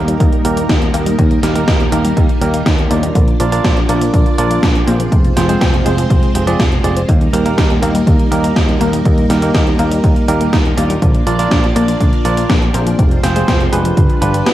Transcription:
Already playing: D#2 G3 A#3 D#4 G4 A#4
0.08 G3, closed hi-hat
0.20 D#2 D#3, kick, closed hi-hat
0.33 closed hi-hat
0.45 D#2 G3 A#3 D#4 G4 A#4, closed hi-hat
0.57 A#3, closed hi-hat
0.69 D#2 D#4, kick, snare, closed hi-hat
0.82 closed hi-hat
0.94 D#2 A#3 D#4 G4 A#4, closed hi-hat
1.06 G3, closed hi-hat
1.19 D#2 D#3, kick, closed hi-hat
1.31 closed hi-hat
1.43 D#2 G3 A#3 D#4 G4 A#4, snare, closed hi-hat
1.55 A#3 D#4 G4 A#4, closed hi-hat
1.68 D#2 D#4, kick, snare, closed hi-hat
1.80 closed hi-hat
1.92 D#2 A#3 D#4 G4 A#4, closed hi-hat
2.05 G3, closed hi-hat
2.17 D#2 D#3, kick, closed hi-hat
2.29 closed hi-hat
2.41 D#2 G3 A#3 D#4 G4 A#4, closed hi-hat
2.54 A#3, closed hi-hat
2.66 D#2 D#4, kick, snare, closed hi-hat
2.78 closed hi-hat
2.91 D#2 A#3 D4 F4 A#4 D5, closed hi-hat
3.03 G3, closed hi-hat
3.15 A#1 D3 A#3 D4 F4 D5, kick, closed hi-hat
3.28 closed hi-hat
3.40 A#1 F3 D4 F4 A#4 D5, closed hi-hat
3.52 A#3 D4 F4 A#4 D5, closed hi-hat
3.64 A#1 D4, kick, snare, closed hi-hat
3.77 closed hi-hat
3.89 A#1 A#3 D4 F4 A#4 D5, closed hi-hat
4.01 F3, closed hi-hat
4.14 A#1 D3, kick, closed hi-hat
4.26 closed hi-hat
4.38 A#1 F3 D4 F4 A#4 D5, closed hi-hat
4.51 A#3, closed hi-hat
4.63 A#1 D4, kick, snare, closed hi-hat
4.75 closed hi-hat
4.87 A#1 A#3 C4 F4 G#4 C5, closed hi-hat
5.00 F3, closed hi-hat
5.12 F1 C3 G#3 C4 C5, kick, closed hi-hat
5.25 closed hi-hat
5.37 F1 F3 C4 F4 G#4 C5, snare, closed hi-hat
5.49 G#3 C4 F4 G#4 C5, closed hi-hat
5.61 F1 C4, kick, snare, closed hi-hat
5.74 closed hi-hat
5.86 F1 G#3 C4 F4 G#4 C5, closed hi-hat
5.98 F3, closed hi-hat
6.10 F1 C3, kick, closed hi-hat
6.23 closed hi-hat
6.35 F1 C3 C4 F4 G#4 C5, closed hi-hat
6.47 F3 C4 F4 G#4 D5, closed hi-hat
6.59 F1 F3, kick, snare, closed hi-hat
6.72 closed hi-hat
6.84 F1 G#3 C4 F4 G#4 D5, closed hi-hat
6.96 C5, closed hi-hat
7.09 D#2 D#3 G3 A#3 D#4 A#4, kick, closed hi-hat
7.21 closed hi-hat
7.33 D#2 G3 A#3 D#4 G4 A#4, closed hi-hat
7.45 A#3 D#4 G4 A#4, closed hi-hat
7.58 D#2 D#4, kick, snare, closed hi-hat
7.70 closed hi-hat
7.82 D#2 A#3 D#4 G4 A#4, closed hi-hat
7.95 G3, closed hi-hat
8.07 D#2 D#3, kick, closed hi-hat
8.19 closed hi-hat
8.32 D#2 G3 A#3 D#4 G4 A#4, closed hi-hat
8.44 A#3, closed hi-hat
8.56 D#2 D#4, kick, snare, closed hi-hat
8.69 closed hi-hat
8.81 D#2 A#3 D#4 G4 A#4, closed hi-hat
8.93 G3, closed hi-hat
9.05 D#2 D#3, kick, closed hi-hat
9.18 closed hi-hat
9.30 D#2 G3 A#3 D#4 G4 A#4, snare, closed hi-hat
9.42 A#3 D#4 G4 A#4, closed hi-hat
9.55 D#2 D#4, kick, snare, closed hi-hat
9.67 closed hi-hat
9.79 D#2 A#3 D#4 G4 A#4, closed hi-hat
9.91 G3, closed hi-hat
10.04 D#2 D#3, kick, closed hi-hat
10.16 closed hi-hat
10.28 D#2 G3 A#3 D#4 G4 A#4, closed hi-hat
10.41 A#3, closed hi-hat
10.53 D#2 D#4, kick, snare, closed hi-hat
10.65 closed hi-hat
10.77 D#2 A#3 D4 F4 A#4 D5, closed hi-hat
10.90 G3, closed hi-hat
11.02 A#1 D3 A#3 D4 F4 D5, kick, closed hi-hat
11.15 closed hi-hat
11.27 A#1 F3 D4 F4 A#4 D5, closed hi-hat
11.39 A#3 D4 F4 A#4 D5, closed hi-hat
11.51 A#1 D4, kick, snare, closed hi-hat
11.64 closed hi-hat
11.76 A#1 A#3 D4 F4 A#4 D5, closed hi-hat
11.88 F3, closed hi-hat
12.00 A#1 D3, kick, closed hi-hat
12.13 closed hi-hat
12.25 A#1 F3 D4 F4 A#4 D5, closed hi-hat
12.37 A#3, closed hi-hat
12.50 A#1 D4, kick, snare, closed hi-hat
12.62 closed hi-hat
12.74 A#1 A#3 C4 F4 G#4 C5, closed hi-hat
12.87 F3, closed hi-hat
12.99 F1 C3 G#3 C4 C5, kick, closed hi-hat
13.11 closed hi-hat
13.23 F1 F3 C4 F4 G#4 C5, snare, closed hi-hat
13.36 G#3 C4 F4 G#4 C5, closed hi-hat
13.48 F1 C4, kick, snare, closed hi-hat
13.60 closed hi-hat
13.73 F1 G#3 D4 F4 G4 B4, closed hi-hat
13.85 F3, closed hi-hat
13.97 G1 D3 G3 D4 B4, kick, closed hi-hat
14.10 closed hi-hat
14.22 G1 F3 D4 F4 G4 B4, closed hi-hat
14.34 G3, closed hi-hat
14.46 B3, snare, closed hi-hat

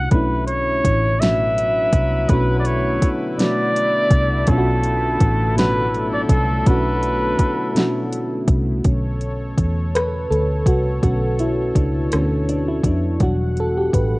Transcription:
Already playing: B2 A3 C#4 D4 F#4
0.10 B1 B2 D3 A3 B3 C#4 D4 E4 B4, kick, closed hi-hat
0.15 E4
0.47 C#5, closed hi-hat
0.84 A1, kick, closed hi-hat
1.19 B2 F#3 A3 C#4 D4 E4 B4 E5, snare, closed hi-hat
1.24 F#4
1.58 closed hi-hat
1.93 C2, kick, closed hi-hat
2.28 B1 B2 A3 C#4 D4 B4, kick, closed hi-hat
2.33 F#4
2.59 D5
2.65 C#5, closed hi-hat
3.02 muted fingered electric bass stroke, kick, closed hi-hat
3.38 B2 A3 B3 D4 D5, snare, closed hi-hat
3.42 F#4
3.76 closed hi-hat
4.11 C2, kick, closed hi-hat
4.47 B1 B2 A3 C#4 D4 A4, kick, closed hi-hat
4.51 F4
4.58 F#4
4.83 closed hi-hat
5.20 A1, kick, closed hi-hat
5.56 B2 F#3 A3 C#4 D4 E4 F#4 A4 B4, snare, closed hi-hat
5.95 closed hi-hat
6.13 D5
6.29 C2 A4, kick, closed hi-hat
6.65 B1 B2 A3 C#4 D4 B4, kick, closed hi-hat
6.70 F#4
7.03 closed hi-hat
7.39 muted fingered electric bass stroke, kick, closed hi-hat
7.75 B2 A3 C#4 D4, snare, closed hi-hat
7.80 F#4
8.13 closed hi-hat
8.48 C2, kick, closed hi-hat
8.84 B1 B2 D3 A3 C#4 A4 C#5, kick, closed hi-hat
9.21 closed hi-hat
9.58 E2, kick, closed hi-hat
9.95 B4, cross-stick, closed hi-hat
10.30 D2 A4, closed hi-hat
10.66 C2 F#4, kick, closed hi-hat
11.02 B1 D3 A3 C#4 F#4, kick, closed hi-hat
11.39 E4, closed hi-hat
11.75 C#2 D4, kick, closed hi-hat
12.12 D2 C#4, cross-stick, closed hi-hat
12.49 D4, closed hi-hat
12.68 E4
12.84 F2 D4, kick, closed hi-hat
13.20 E1 E3 F#3 G3 D4 F#4 F#5, kick, closed hi-hat
13.57 A4, closed hi-hat
13.78 G4
13.94 A1 B4, kick, closed hi-hat

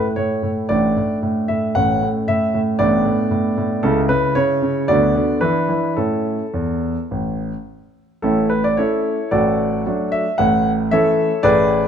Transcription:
Already playing: A2 A3 E4
0.16 A2 C#5
0.43 A2
0.69 A1 A2 A3 D4 D5
0.97 A2
1.23 A2
1.48 A2 E5
1.75 A1 A2 A3 C#4 F#5
2.02 A2
2.28 A2 E5
2.54 A2
2.79 A1 A2 B3 D4 D5
3.05 A2
3.31 A2
3.58 A2
3.83 C#2 C#3 C#4 E4 A4
4.09 C#3 B4
4.35 C#3 C#5
4.62 C#3
4.88 D2 D3 B3 F#4 D5
5.15 D3
5.41 E3 D4 E4 B4
5.69 E3
5.97 A2 C#4 E4 A4
6.54 E2
7.11 A1
8.22 A1 A2 C#4 E4 A4
8.49 B4
8.64 D5
8.77 A3 C#4 E4 A4 C#5
9.31 A1 A2 F#4 A4 D5
9.86 F#3 A3 D4
10.12 E5
10.38 A1 A2 F#5
10.91 E3 A3 C#4 A4 C#5 E5
11.43 A1 A2 G#4 B4 D5

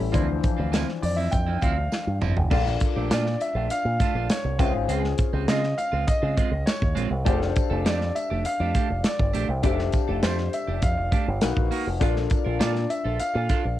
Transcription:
Already playing: G3 C#4 E4 A4
0.00 A1
0.12 D2 E3 F3 C4 D4 E4 C5, kick, closed hi-hat, tambourine
0.27 muted clean electric guitar stroke
0.42 muted clean electric guitar stroke, kick, closed hi-hat, tambourine
0.57 D2 F3 C4 F4
0.72 F3 C4 E4, snare, closed hi-hat, tambourine
0.88 muted clean electric guitar stroke, snare
1.02 F2 D5, muted clean electric guitar stroke, open hi-hat, tambourine
1.16 F3 C4 E4 E5
1.31 F2 G5, muted clean electric guitar stroke, kick, closed hi-hat, tambourine
1.46 F3 C4 E4
1.61 D2 F3 C4 E4 F5, kick, closed hi-hat, tambourine
1.77 muted clean electric guitar stroke
1.92 muted clean electric guitar stroke, snare, tambourine
2.06 G2, muted clean electric guitar stroke
2.21 G1 F3 C4 E4, mid tom, tambourine
2.36 F1, muted clean electric guitar stroke, floor tom
2.50 A#1 A3 D4 F4 A4 A#4 F5, kick, crash
2.66 muted clean electric guitar stroke, snare
2.80 muted clean electric guitar stroke, kick, closed hi-hat, tambourine
2.96 A#1 A3 D4 G4
3.10 A#2 A3 D4 F4 D5, snare, closed hi-hat, tambourine
3.25 muted clean electric guitar stroke, snare
3.40 E5, muted clean electric guitar stroke, closed hi-hat, tambourine
3.55 A#1 A3 D4 F4
3.70 F5, muted fingered electric bass stroke, muted clean electric guitar stroke, closed hi-hat, tambourine
3.85 A#2, muted clean electric guitar stroke
4.00 A3 D4 F4, kick, closed hi-hat, tambourine
4.15 A#1 A3 D4 F4
4.30 C#5, snare, closed hi-hat, tambourine
4.44 C2, muted clean electric guitar stroke
4.59 C#2 G#3 C4 C#4 F4 G#4 C5 E5, kick, closed hi-hat, tambourine
4.67 F5
4.74 G#1, muted clean electric guitar stroke
4.88 C#2 G#3 C4 F4, closed hi-hat, tambourine
5.03 muted clean electric guitar stroke, snare
5.18 muted clean electric guitar stroke, kick, closed hi-hat, tambourine
5.33 C#2 G#3 C4 G4
5.48 C#3 G#3 C4 F4 D#5, snare, closed hi-hat, tambourine
5.63 muted clean electric guitar stroke, snare
5.78 F5, muted clean electric guitar stroke, closed hi-hat, tambourine
5.92 C#2 G#3 C4 F4
6.07 D#5, muted clean electric guitar stroke, muted fingered electric bass stroke, kick, closed hi-hat, tambourine
6.22 C#3 G#3 C4 F4
6.37 G#3 C4 F4, kick, closed hi-hat
6.51 C#2, muted clean electric guitar stroke
6.66 C#5, snare, closed hi-hat, tambourine
6.81 D#2, muted clean electric guitar stroke, kick
6.95 A#1 G#3 C4 F4, closed hi-hat, tambourine
7.10 C2, muted clean electric guitar stroke
7.25 F1 A3 D4 G4 G#4 C5 F5, kick, closed hi-hat
7.33 A4
7.40 muted clean electric guitar stroke, snare
7.55 muted clean electric guitar stroke, kick, closed hi-hat, tambourine
7.70 F1 A3 D4 A4
7.85 F2 A3 D4 G4 D5, snare, closed hi-hat, tambourine
8.01 muted clean electric guitar stroke, snare
8.15 E5, muted clean electric guitar stroke, closed hi-hat, tambourine
8.30 F1 A3 D4 G4
8.45 F5, muted clean electric guitar stroke, muted fingered electric bass stroke, closed hi-hat, tambourine
8.60 F2 A3 D4 G4
8.75 A3 D4 G4, kick, closed hi-hat
8.89 F1, muted clean electric guitar stroke
9.04 D5, snare, closed hi-hat, tambourine
9.19 G1, muted clean electric guitar stroke, kick
9.33 A#1 A3 D4 G4, closed hi-hat, tambourine
9.49 C2, muted clean electric guitar stroke
9.63 F1 A3 D4 G4 A4 C5 E5, kick, closed hi-hat, tambourine
9.72 F5
9.79 muted clean electric guitar stroke, snare
9.93 muted clean electric guitar stroke, kick, closed hi-hat, tambourine
10.08 F1 A3 D4 A4
10.23 F2 A3 D4 G4 C5, snare, closed hi-hat, tambourine
10.38 muted clean electric guitar stroke, snare
10.53 E5, muted clean electric guitar stroke, closed hi-hat, tambourine
10.67 F1 A3 D4 G4
10.82 F2 F5, muted clean electric guitar stroke, kick, closed hi-hat, tambourine
10.98 F1, muted clean electric guitar stroke
11.12 A3 D4 G4, kick, closed hi-hat, tambourine
11.26 G1, muted clean electric guitar stroke
11.41 B1 D#4 F#4 A#4 B4 F#5, snare, closed hi-hat, tambourine
11.56 A#1, muted clean electric guitar stroke, kick
11.71 A#3 D#4 F#4, open hi-hat, tambourine
11.86 F1, muted clean electric guitar stroke
12.00 A#1 D4 F4 A4 A#4 F5, kick, closed hi-hat, tambourine
12.16 muted clean electric guitar stroke, snare
12.30 muted clean electric guitar stroke, kick, closed hi-hat, tambourine
12.45 A#1 D4 F4 A#4
12.59 A#2 D4 F4 A4 D5, snare, closed hi-hat, tambourine
12.75 muted clean electric guitar stroke, snare
12.89 E5, muted clean electric guitar stroke, closed hi-hat, tambourine
13.05 A#1 D4 F4 A4
13.19 F5, muted clean electric guitar stroke, muted fingered electric bass stroke, closed hi-hat, tambourine
13.34 A#2 D4 F4 A4
13.49 D4 F4 A4, kick, closed hi-hat, tambourine
13.64 A#1, muted clean electric guitar stroke

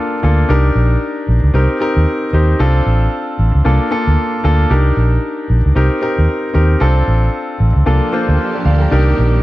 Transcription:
Already playing: A#3 D4 F4 A4
0.23 D2 A#3 D4 F4 A4
0.49 C2 D4 D#4 G4 A#4
0.75 A#1
1.28 A#1
1.44 C#2
1.54 C2 C4 D#4 G4 A#4
1.80 C4 D#4 G4 A#4
1.97 D#2
2.33 D#2 C4 D#4 G4 C5
2.59 C2 C4 D4 F4 A4
2.86 A1
3.39 A1
3.55 C#2
3.65 C2 A#3 D4 F4 A4
3.91 A#3 D4 F4 A4
4.07 D2
4.44 D2 A#3 D4 F4 A4
4.70 C2 D4 D#4 G4 A#4
4.97 A#1
5.50 A#1
5.66 C#2
5.75 C2 C4 D#4 G4 A#4
6.01 C4 D#4 G4 A#4
6.18 D#2
6.53 D#2 C4 D#4 G4 A#4
6.80 C2 C4 D4 F4 A4
7.08 A1
7.60 A1
7.76 C#2
7.86 C2 F3 A#3 D4 F4 G4 A4
8.12 A#3 D4 F4 C5
8.29 D2
8.55 A#4 D5
8.65 D2 D5 F5
8.81 G5 A#5
8.91 C2 D#3 G3 C4 D4 D#4 G4 A#4
9.19 A#1

